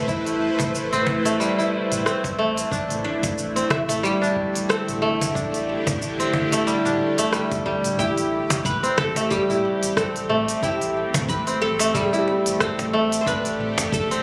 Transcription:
Already playing: G3 A3 C4 E4 B4 C5
0.08 A1 E4, kick, cabasa
0.26 open hi-hat, cabasa
0.59 A1, kick, cajon bass, cajon slap, open hi-hat, cabasa
0.75 cabasa
0.93 C4, mid tom, open hi-hat, cabasa
1.07 A1, cajon bass
1.25 A3, cajon slap, open hi-hat, cabasa
1.40 G3, cabasa
1.58 E1 E4, cabasa
1.91 A1, mid tom, open hi-hat, cabasa
2.06 C4, cross-stick, cabasa
2.24 A1, kick, cajon slap, open hi-hat, cabasa
2.39 A3
2.57 open hi-hat, cabasa
2.72 A1 D3 D4 G4, kick, cabasa
2.90 mid tom, open hi-hat, cabasa
3.05 D4
3.23 A1, kick, cajon slap, open hi-hat, cabasa
3.38 cabasa
3.56 C4, open hi-hat, cabasa
3.70 A1 E4, cajon bass, cross-stick
3.89 A3, cajon slap, mid tom, open hi-hat, cabasa
4.03 G3 G4, cabasa
4.22 E1 D4, cabasa
4.36 kick
4.55 A1, open hi-hat, cabasa
4.69 C4 A4, cross-stick, cabasa
4.87 A1, mid tom, open hi-hat, cabasa
5.02 A3
5.21 cajon bass, open hi-hat, cabasa
5.35 A1 D4, kick, cabasa
5.54 open hi-hat, cabasa
5.87 A1, kick, cajon bass, cajon slap, mid tom, open hi-hat, cabasa
6.02 cabasa
6.20 C4, open hi-hat, cabasa
6.34 A1, cajon bass
6.52 A3, cajon slap, open hi-hat, cabasa
6.67 G3, cabasa
6.85 E1 D4, mid tom, cabasa
7.18 A1 A3, open hi-hat, cabasa
7.33 G3, cross-stick, cabasa
7.51 A1, kick, cajon slap, open hi-hat, cabasa
7.66 G3, kick, cajon slap
7.84 mid tom, open hi-hat, cabasa
7.99 A1 A3 C4 E4 G4, kick, cabasa
8.18 open hi-hat, cabasa
8.50 A1, cajon bass, cajon slap, open hi-hat, cabasa
8.65 B4, kick, mid tom, cabasa
8.83 C4, open hi-hat, cabasa
8.98 A1 A4, cajon bass, cross-stick
9.16 A3, cajon slap, open hi-hat, cabasa
9.31 G3 G4, kick, cabasa
9.49 E1 E4, mid tom, cabasa
9.82 A1, open hi-hat, cabasa
9.97 C4 A4, kick, cross-stick, cabasa
10.15 A1, open hi-hat, cabasa
10.29 A3, mid tom
10.48 open hi-hat, cabasa
10.63 A1 E4 G4, kick, cabasa
10.81 open hi-hat, cabasa
11.14 A1, cajon bass, cajon slap, mid tom, open hi-hat, cabasa
11.29 B4, kick, cabasa
11.47 C4, open hi-hat, cabasa
11.62 A1 A4
11.79 A3, cajon slap, open hi-hat, cabasa
11.94 G3 G4, kick, mid tom, cabasa
12.13 E1 E4, cabasa
12.28 cajon slap
12.46 A1, open hi-hat, cabasa
12.60 C4 A4, kick, cross-stick, cabasa
12.79 A1, cajon slap, mid tom, open hi-hat, cabasa
12.93 A3
13.12 open hi-hat, cabasa
13.21 C5
13.26 A1 D3 D4 B4 E5, kick, cabasa
13.45 open hi-hat, cabasa
13.59 mid tom
13.78 A1, cajon bass, cajon slap, open hi-hat, cabasa
13.92 A4, kick, cabasa
14.11 C4, open hi-hat, cabasa

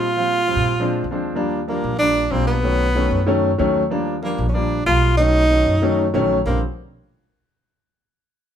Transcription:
Already playing: A#2 F4
0.16 F3 G3 C4 F4
0.48 F3 G3 C4 F4
0.56 A#2
0.80 F3 G#3 C4 D4
1.04 D#2
1.11 F3 G#3 C4 D4
1.35 F3 G3 A#3 D4
1.68 F3 G3 A#3 D4
1.84 A#1
1.99 F3 G3 A#3 D4
2.31 B1 F3 G3 A#3 C4 D4
2.47 B3
2.63 D#3 F#3 A3 C#4
2.95 D#3 F#3 A3 C#4
3.11 F#2
3.26 D#3 F#3 A3 C#4
3.58 D#2 D#3 F#3 A3 C#4
3.90 F3 G3 A#3 D4
4.22 F3 G3 A#3 D4
4.38 A#1
4.49 C#4
4.54 F3 G3 A#3 D4
4.86 B1 F3 G3 A#3 F4
5.17 D#3 F#3 A3 C#4 D#4
5.50 D#3 F#3 A3 C#4
5.66 F#2
5.82 D#3 F#3 A3 C#4
6.14 A#1 D#3 F#3 A3 C#4
6.46 A#1 D3 F3 G3 A#3 C4

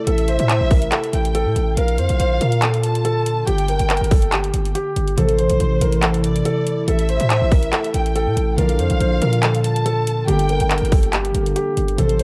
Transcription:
Already playing: C3 A3 E4
0.07 A1 A4 E5, closed hi-hat
0.18 closed hi-hat
0.28 C5, closed hi-hat
0.39 A2, closed hi-hat
0.49 C5, clap, closed hi-hat
0.61 A1
0.71 A#4, kick, open hi-hat
0.82 closed hi-hat
0.92 A4, clap, closed hi-hat
1.04 closed hi-hat
1.13 A1 G5, closed hi-hat
1.25 closed hi-hat
1.35 A4, closed hi-hat
1.46 A2
1.56 A1, closed hi-hat
1.77 A#1 D3 A#3 F4 A#4 F5, closed hi-hat
1.88 closed hi-hat
1.98 F2 C5, closed hi-hat
2.09 A#1, closed hi-hat
2.20 A#1 C5, closed hi-hat
2.41 A#2 A#4, closed hi-hat
2.52 closed hi-hat
2.62 A4, clap, closed hi-hat
2.74 closed hi-hat
2.83 A5, closed hi-hat
2.95 closed hi-hat
3.05 A4, closed hi-hat
3.26 closed hi-hat
3.46 G1 G4 G5, closed hi-hat
3.58 closed hi-hat
3.68 A#4, closed hi-hat
3.79 G1, closed hi-hat
3.90 A#4, clap, closed hi-hat
3.97 closed hi-hat
4.01 G1, closed hi-hat
4.11 A4, kick, open hi-hat
4.22 closed hi-hat
4.32 G4, clap, closed hi-hat
4.44 closed hi-hat
4.54 G1, closed hi-hat
4.65 closed hi-hat
4.75 G4, closed hi-hat
4.96 G1, closed hi-hat
5.08 closed hi-hat
5.16 A1 C3 E3 A3 E4 A4 C5, closed hi-hat
5.20 A4
5.29 closed hi-hat
5.38 C5, closed hi-hat
5.49 A1, closed hi-hat
5.60 A1 C5, closed hi-hat
5.81 A1 A#4, closed hi-hat
5.92 closed hi-hat
6.02 A4, clap, closed hi-hat
6.14 closed hi-hat
6.24 D5, closed hi-hat
6.36 closed hi-hat
6.45 A4, closed hi-hat
6.67 closed hi-hat
6.87 A1 A4 E5, closed hi-hat
6.99 closed hi-hat
7.09 C5, closed hi-hat
7.20 A2, closed hi-hat
7.30 C5, clap, closed hi-hat
7.42 A1
7.51 A#4, kick, open hi-hat
7.63 closed hi-hat
7.72 A4, clap, closed hi-hat
7.84 closed hi-hat
7.94 A1 G5, closed hi-hat
8.06 closed hi-hat
8.16 A4, closed hi-hat
8.27 A2
8.37 A1, closed hi-hat
8.56 A#1 D3 F3 A#3 F4 A#4 F5, closed hi-hat
8.60 D5
8.69 closed hi-hat
8.79 F2 C5, closed hi-hat
8.90 A#1, closed hi-hat
9.00 A#1 C5, closed hi-hat
9.22 A#2 A#4, closed hi-hat
9.33 closed hi-hat
9.43 A4, clap, closed hi-hat
9.55 closed hi-hat
9.64 A5, closed hi-hat
9.76 closed hi-hat
9.86 A4, closed hi-hat
10.07 closed hi-hat
10.26 G1 D3 G3 A#3 G4 G5, closed hi-hat
10.30 A#4
10.39 closed hi-hat
10.49 A#4, closed hi-hat
10.60 G1, closed hi-hat
10.71 A#4, clap, closed hi-hat
10.78 closed hi-hat
10.82 G1, closed hi-hat
10.92 A4, kick, open hi-hat
11.03 closed hi-hat
11.13 G4, clap, closed hi-hat
11.25 closed hi-hat
11.34 G1 D3 G3 A#3 G4 A#4, closed hi-hat
11.46 closed hi-hat
11.56 G4, closed hi-hat
11.77 G1, closed hi-hat
11.88 closed hi-hat
11.96 A1 C3 E3 A3 E4 A4 C5, closed hi-hat
12.00 A4
12.09 closed hi-hat
12.19 C5, closed hi-hat

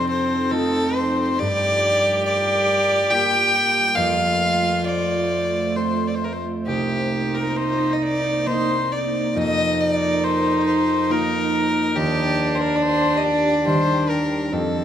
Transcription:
Already playing: F2 F3 C4 D4 D#4 G4 A4
0.09 C5
0.51 A3 D#4 F4 A4
0.96 C5
1.39 G2 G3 F4 G4 A#4 D5
2.26 D5
3.11 A#3 F4 G4 G5
3.95 F2 A3 F4 C5 F5
4.84 D5
5.75 C4 F4 A4 C5
6.07 D5
6.15 C5
6.24 A#4
6.33 C5
6.66 C2 A#3 D#4 G4
7.34 A#4
7.57 C5
7.93 D#5
8.02 D5
8.46 A#3 C4 D#4 C5
8.92 D5
9.35 F2 F3 D#4 A#4 D#5
9.81 D5
10.24 C5
10.66 C5
11.09 A#3 D#4 F4 A#4
11.95 D#2 D#3 D4 G4
12.55 C5
12.61 A#4
12.76 D5
12.82 C5
13.17 D#5
13.24 D5
13.66 D#3 G3 D4 C5
14.09 A#4
14.52 F2 C4 A4

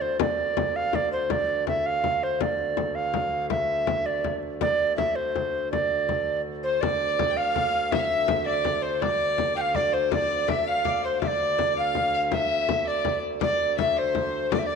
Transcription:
Already playing: D2
0.01 C5, frame drum
0.20 D5, frame drum
0.39 frame drum
0.57 frame drum
0.75 F5, frame drum
0.93 D5, frame drum
1.12 C5, frame drum
1.30 D5, frame drum
1.49 frame drum
1.67 E5, frame drum
1.85 F5, frame drum
2.04 frame drum
2.23 C5
2.41 D2 D5, frame drum
2.59 frame drum
2.77 frame drum
2.95 F5, frame drum
3.14 frame drum
3.32 frame drum
3.50 E5, frame drum
3.69 frame drum
3.87 frame drum
4.06 D5, frame drum
4.24 frame drum
4.43 frame drum
4.61 D5, frame drum
4.80 frame drum
4.97 E5, frame drum
5.15 C5, frame drum
5.36 frame drum
5.54 frame drum
5.72 D5, frame drum
5.91 frame drum
6.09 frame drum
6.28 frame drum
6.63 C5
6.81 D2 D5, frame drum
7.01 frame drum
7.19 frame drum
7.31 G5
7.37 F5, frame drum
7.56 frame drum
7.74 frame drum
7.91 E5, frame drum
7.99 F5
8.05 E5
8.10 frame drum
8.28 frame drum
8.46 D5, frame drum
8.65 frame drum
8.82 C5, frame drum
9.02 D5, frame drum
9.20 frame drum
9.38 frame drum
9.56 F5 G5, frame drum
9.61 F5
9.75 D5, frame drum
9.93 C5, frame drum
10.11 D5, frame drum
10.48 E5, frame drum
10.67 F5, frame drum
10.85 D5, frame drum
11.04 C5
11.21 D2 D5 E5, frame drum
11.27 D5
11.40 frame drum
11.59 frame drum
11.77 F5, frame drum
11.95 frame drum
12.13 F5, frame drum
12.32 E5, frame drum
12.69 frame drum
12.86 D5, frame drum
13.05 frame drum
13.23 frame drum
13.41 D5, frame drum
13.60 frame drum
13.77 E5, frame drum
13.97 C5, frame drum
14.15 frame drum
14.34 frame drum
14.52 D5, frame drum
14.59 E5
14.64 D5

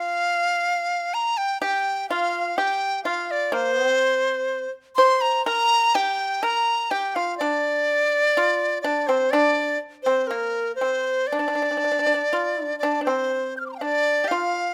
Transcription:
Already playing: F4 F5
1.14 A#5
1.37 G5
1.61 G4 G5
2.09 F4 F5
2.57 G4 G5
3.04 F4 F5
3.31 D5
3.52 A#3 C5
3.73 B3
3.86 C4
4.96 C5 C6
5.21 A#5
5.45 A#4 A#5
5.95 G4 G5
6.43 A#4 A#5
6.91 G4 G5
7.15 F4 F5
7.38 D4 D5
8.37 F4
8.82 D4 D5
9.07 C4 C5
9.31 D4 D5
10.03 C4 C5
10.27 A#3 A#4
10.75 C5
10.81 C4
11.27 D5
11.32 D4
11.39 D4
11.48 D4
11.55 D4
11.62 D4
11.71 D4
11.77 D4
11.84 D4
11.92 D4
11.99 D4
12.06 D4
12.14 D4
12.33 F4
12.64 D4
12.79 D5
12.83 D4
13.01 D4 C5
13.07 C4
13.57 F6 G6
13.66 C6 D6
13.71 A#5
13.75 F5 G5
13.80 D4 D5
14.24 G4 F5
14.31 F4

